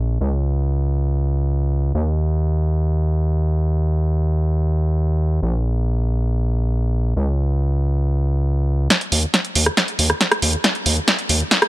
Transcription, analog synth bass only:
0.00 0.19 A#1 medium
0.21 1.92 C#2 medium
1.95 5.40 D#2 medium
5.42 7.14 A#1 medium
7.16 8.88 C#2 medium
9.12 9.26 D#2 medium
9.55 9.69 D#2 medium
9.99 10.12 D#2 medium
10.42 10.56 D#2 medium
10.86 10.99 D#2 loud
11.29 11.43 D#2 medium

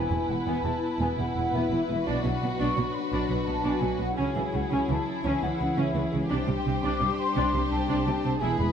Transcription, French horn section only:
0.00 2.02 B3 soft
0.00 2.03 E4 soft
2.06 5.21 F#3 soft
2.06 4.15 D4 soft
4.17 6.30 C#4 soft
5.22 6.29 E3 soft
6.30 8.41 G3 soft
6.30 8.41 D4 medium
8.39 8.72 G#3 soft
8.39 8.72 E4 medium

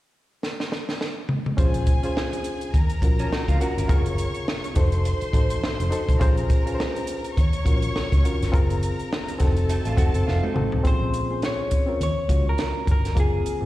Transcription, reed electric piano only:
1.57 1.96 C#4 loud
1.57 1.97 F4 medium
1.57 1.97 G#4 medium
1.57 1.97 C5 loud
2.03 2.74 C#4 medium
2.03 2.74 F4 medium
2.03 2.74 G#4 medium
2.03 2.75 C5 medium
3.02 3.53 C#4 medium
3.02 3.54 F4 medium
3.02 3.54 F#4 medium
3.02 3.55 A#4 medium
3.59 3.85 C#4 medium
3.59 3.86 F4 medium
3.59 3.86 F#4 medium
3.59 3.87 A#4 medium
3.88 4.65 C3 medium
3.88 4.65 F4 medium
3.88 4.66 G#4 medium
3.88 4.66 A#4 loud
4.75 5.26 D#4 medium
4.75 5.27 F#4 medium
4.75 5.27 A4 medium
4.75 5.28 C5 medium
5.33 5.84 D#4 medium
5.33 5.85 F#4 medium
5.33 5.85 A4 medium
5.33 5.86 C5 medium
5.90 6.17 D#4 medium
5.90 6.17 F#4 medium
5.90 6.18 A4 medium
5.90 6.18 C5 medium
6.19 6.59 C#4 loud
6.19 6.59 F4 loud
6.19 6.60 G#4 loud
6.19 6.60 C5 loud
6.66 7.37 C#4 medium
6.66 7.37 F4 medium
6.66 7.37 G#4 medium
6.66 6.73 B4 medium
6.75 7.41 C5 medium
7.65 8.16 C#4 medium
7.65 8.17 F4 medium
7.65 8.17 F#4 medium
7.65 8.17 A#4 medium
8.23 8.49 C#4 medium
8.23 8.49 F4 medium
8.23 8.50 F#4 medium
8.23 8.50 A#4 medium
8.52 9.29 C4 medium
8.52 9.29 F4 medium
8.52 9.30 G#4 medium
8.52 9.30 A#4 loud
9.39 9.90 C4 medium
9.39 9.91 D#4 medium
9.39 9.91 F#4 medium
9.39 9.92 A4 medium
9.97 10.48 C4 medium
9.97 10.49 D#4 medium
9.97 10.49 F#4 medium
9.97 10.49 A4 medium
10.54 10.81 C4 medium
10.54 10.81 D#4 medium
10.54 10.81 F#4 medium
10.54 10.82 A4 medium
10.83 11.23 C4 medium
10.83 11.23 C#4 medium
10.83 11.23 F4 medium
10.83 11.24 G#4 medium
11.29 11.78 A#3 medium
11.29 11.79 C#4 medium
11.29 11.79 F4 soft
11.29 11.79 G#4 medium
11.86 12.00 C4 medium
11.86 12.00 C#4 medium
11.86 12.01 F4 medium
11.86 12.01 A#4 medium
12.28 13.06 A#3 medium
12.28 13.06 C#4 medium
12.28 13.06 F4 medium
12.28 13.07 F#4 medium
13.15 13.55 A#3 medium
13.15 13.55 C4 medium
13.15 13.55 F4 medium
13.15 13.56 G#4 medium
13.60 13.65 A#3 medium
13.60 13.65 C4 soft
13.60 13.65 F4 medium

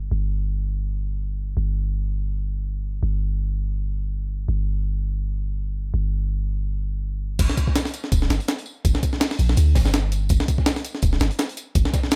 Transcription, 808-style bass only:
0.00 0.10 G1 medium
0.12 1.55 G1 medium
1.57 3.01 G1 medium
3.03 4.47 G1 medium
4.48 5.92 G1 medium
5.94 7.38 G1 medium
7.39 7.48 G1 loud
8.12 8.28 D1 loud
8.30 8.39 G1 loud
8.85 8.94 G1 loud
9.39 9.56 A#1 medium
9.57 9.77 D2 loud
9.76 10.29 G1 loud
10.30 10.39 G1 loud
11.03 11.19 D1 medium
11.21 11.30 G1 loud
11.75 11.84 G1 loud

